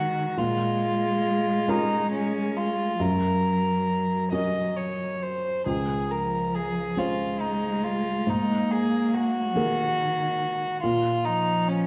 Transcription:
0.00 0.38 D#3 medium
0.00 0.34 G#3 soft
0.00 0.40 F#4 medium
0.00 0.34 G#4 soft
0.00 0.34 A#4 soft
0.37 1.63 A#2 medium
0.37 2.99 G#3 medium
0.37 1.71 F4 medium
1.68 2.96 C#4 soft
1.68 2.12 D#4 medium
1.68 2.96 F4 soft
1.68 2.96 A#4 soft
2.12 2.57 C#4 medium
2.56 3.02 F4 medium
2.99 4.28 F#2 soft
2.99 5.17 F#3 medium
2.99 4.23 A#4 medium
4.32 5.62 C#4 soft
4.32 5.62 F#4 soft
4.32 5.62 A#4 soft
4.32 4.77 D#5 medium
4.76 5.24 C#5 soft
5.22 5.66 C5 soft
5.66 6.94 C#2 soft
5.66 6.12 G#4 soft
6.10 6.98 F3 medium
6.10 6.56 A#4 soft
6.55 7.00 G#4 soft
6.96 8.29 G#3 medium
6.96 8.24 C#4 soft
6.96 8.24 F4 soft
6.96 7.42 F4 soft
6.96 8.24 C5 soft
7.40 7.86 D#4 soft
7.84 8.30 F4 medium
8.27 9.52 G#2 soft
8.27 9.57 A#3 medium
8.27 8.73 D#4 medium
8.71 9.15 G#4 medium
9.14 10.81 F#4 medium
9.56 10.83 D#3 medium
9.56 10.79 A#3 soft
9.56 10.79 G#4 soft
9.56 10.80 A#4 soft
10.82 11.87 A#2 medium
10.82 11.27 F4 medium
11.24 11.87 F3 medium
11.24 11.69 D#4 medium
11.68 11.87 C#4 medium

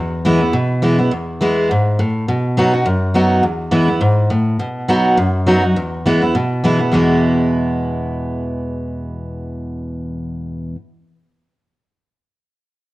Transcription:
0.00 0.51 E2 medium
0.25 0.40 E3 medium
0.25 0.40 G#3 medium
0.25 0.41 B3 medium
0.25 0.39 E4 loud
0.40 0.54 B3 soft
0.40 0.53 E4 medium
0.53 1.09 B2 medium
0.82 0.98 E3 medium
0.82 0.98 G#3 medium
0.82 0.98 B3 medium
0.82 0.97 E4 medium
0.98 1.12 B3 medium
0.98 1.11 E4 medium
1.11 1.67 E2 medium
1.41 1.68 E3 medium
1.41 1.69 G#3 medium
1.41 1.69 B3 medium
1.41 1.69 E4 medium
1.71 1.98 G#2 medium
1.99 2.27 A2 medium
2.28 2.83 B2 medium
2.57 2.72 F#3 loud
2.57 2.73 B3 loud
2.57 2.73 D#4 medium
2.57 2.72 F#4 medium
2.73 2.86 D#4 medium
2.73 2.86 F#4 medium
2.85 3.41 F#2 medium
3.14 3.42 F#3 medium
3.14 3.43 B3 medium
3.14 3.43 D#4 medium
3.14 3.43 F#4 medium
3.43 3.99 E2 medium
3.71 3.87 E3 medium
3.71 3.88 G#3 medium
3.71 3.88 B3 medium
3.71 3.87 E4 medium
3.88 4.02 B3 soft
3.88 4.01 E4 medium
4.01 4.29 G#2 loud
4.30 4.58 A2 medium
4.59 5.15 B2 medium
4.88 5.17 F#3 medium
4.88 5.17 B3 loud
4.88 5.17 D#4 medium
4.88 5.17 F#4 loud
5.17 5.73 F#2 loud
5.46 5.62 F#3 medium
5.46 5.62 B3 medium
5.46 5.63 D#4 medium
5.46 5.62 F#4 loud
5.63 5.77 D#4 soft
5.63 5.76 F#4 medium
5.76 6.32 E2 medium
6.05 6.21 E3 medium
6.05 6.21 G#3 loud
6.05 6.21 B3 medium
6.05 6.21 E4 loud
6.22 6.35 B3 medium
6.22 6.34 E4 medium
6.35 6.90 B2 medium
6.64 6.79 E3 medium
6.64 6.79 G#3 medium
6.64 6.79 B3 medium
6.64 6.78 E4 medium
6.79 6.93 B3 soft
6.79 6.92 E4 medium
6.92 10.74 E2 medium
6.92 10.75 B2 medium
6.92 10.75 E3 medium
6.92 10.75 G#3 medium
6.92 10.76 B3 medium
6.92 10.76 E4 loud

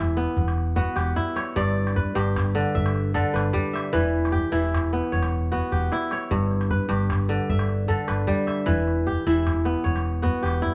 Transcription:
0.00 0.26 E1 medium
0.00 1.61 E3 medium
0.00 1.16 E4 medium
0.00 0.82 G4 medium
0.00 0.41 B4 medium
0.08 calabash click soft
0.17 0.76 B3 medium
0.17 calabash click soft
0.36 0.85 E1 medium
0.36 calabash thump medium
0.48 calabash click medium
0.58 calabash click soft
0.76 2.62 B3 medium
0.76 1.62 F#4 medium
0.76 calabash thump medium
0.96 1.13 E1 medium
0.96 2.15 G4 medium
0.96 calabash click medium
1.16 2.73 E4 medium
1.16 calabash thump medium
1.16 calabash click soft
1.36 2.51 C#5 medium
1.36 calabash click medium
1.56 2.04 G1 medium
1.56 2.14 G2 medium
1.56 2.67 D5 medium
1.56 calabash thump medium
1.77 calabash click soft
1.87 calabash click soft
1.96 3.19 B4 medium
1.96 calabash thump medium
2.15 2.64 G1 medium
2.15 3.98 G2 medium
2.15 3.57 G4 medium
2.36 calabash thump medium
2.36 calabash click medium
2.47 calabash click soft
2.55 3.13 D3 medium
2.55 calabash click soft
2.75 3.23 G1 medium
2.75 3.73 E5 medium
2.75 calabash thump medium
2.86 calabash click medium
2.96 calabash click soft
3.14 3.98 D3 medium
3.14 4.46 A4 medium
3.14 calabash thump medium
3.34 3.50 G1 medium
3.34 3.93 B4 medium
3.34 calabash click medium
3.53 3.98 G3 medium
3.53 calabash thump medium
3.53 calabash click soft
3.73 4.77 E5 medium
3.73 calabash click medium
3.93 4.42 E1 medium
3.93 4.51 E3 medium
3.93 5.16 B4 medium
3.93 calabash thump medium
3.93 calabash click soft
4.25 calabash click soft
4.32 5.58 G4 medium
4.32 calabash thump medium
4.52 5.01 E1 medium
4.52 6.36 E3 medium
4.52 5.92 E4 medium
4.65 calabash click soft
4.75 calabash thump medium
4.75 calabash click medium
4.84 calabash click soft
4.93 5.52 B3 medium
5.04 calabash click soft
5.12 5.61 E1 medium
5.12 6.12 C#5 medium
5.12 calabash thump medium
5.23 calabash click medium
5.33 calabash thump soft
5.52 7.39 B3 medium
5.52 6.37 F#4 medium
5.52 calabash thump soft
5.72 5.88 E1 medium
5.72 6.88 G4 medium
5.72 calabash thump soft
5.92 7.49 E4 medium
5.92 calabash click soft
6.11 7.27 C#5 medium
6.11 calabash click medium
6.31 6.79 G1 medium
6.31 6.88 G2 medium
6.31 calabash thump medium
6.51 calabash click soft
6.61 calabash click soft
6.70 7.94 B4 medium
6.70 calabash thump medium
6.89 7.38 G1 medium
6.89 8.73 G2 medium
6.89 8.30 G4 medium
7.10 calabash thump medium
7.10 calabash click medium
7.21 calabash click soft
7.29 7.87 D3 medium
7.29 calabash click soft
7.49 7.97 G1 medium
7.49 8.47 E5 medium
7.49 calabash thump medium
7.59 calabash click soft
7.69 calabash click soft
7.88 8.73 D3 medium
7.88 9.20 A4 medium
7.88 calabash thump medium
8.08 8.25 G1 medium
8.08 8.66 B4 medium
8.08 calabash click medium
8.27 8.72 G3 medium
8.27 calabash thump medium
8.27 calabash click soft
8.47 9.50 E5 medium
8.47 calabash click soft
8.66 9.16 E1 medium
8.66 9.26 E3 medium
8.66 9.89 B4 medium
8.66 calabash thump medium
8.88 calabash click soft
9.07 10.28 G4 medium
9.07 calabash thump medium
9.26 9.74 E1 medium
9.26 10.74 E3 medium
9.26 10.62 E4 medium
9.47 calabash thump medium
9.47 calabash click medium
9.57 calabash click soft
9.65 10.23 B3 medium
9.65 calabash click soft
9.84 10.34 E1 medium
9.84 10.74 C#5 medium
9.84 calabash thump medium
9.96 calabash click soft
10.06 calabash click soft
10.22 10.74 B3 medium
10.22 10.74 F#4 medium
10.22 calabash thump medium
10.43 10.60 E1 medium
10.43 10.74 G4 medium
10.43 calabash click medium
10.62 10.74 E4 medium
10.62 calabash thump medium
10.62 calabash click soft

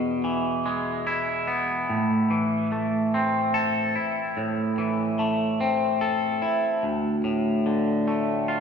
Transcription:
0.00 1.89 E2 medium
0.00 1.90 B2 medium
0.24 2.30 E3 medium
0.66 1.89 G#3 medium
1.07 3.54 E4 medium
1.47 1.89 B3 medium
1.89 3.96 A2 medium
2.30 4.37 E3 medium
2.72 5.19 A3 medium
3.14 5.60 C4 medium
3.54 6.01 A4 medium
3.95 6.01 E4 medium
4.37 6.43 A2 medium
4.78 6.84 E3 medium
5.19 6.84 A3 medium
5.61 6.84 C4 medium
6.01 6.84 A4 medium
6.42 6.83 E4 medium
6.83 8.60 D2 medium
7.24 8.60 A2 medium
7.66 8.60 D3 medium
8.07 8.60 A3 medium
8.48 8.60 F4 medium

